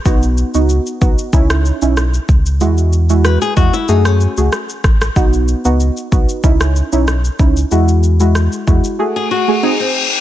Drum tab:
SH |xxxxxxxxxxxxxxxx|xxxxxxxxxxxxxxxx|xxxxxxxxxxxxxxxx|xxxxxxxx--------|
SD |---------r--r---|----r----r--r-rr|---------r--r---|----r-----------|
BD |o-----o-o-----o-|------o-------o-|o-----o-o-----o-|------o---------|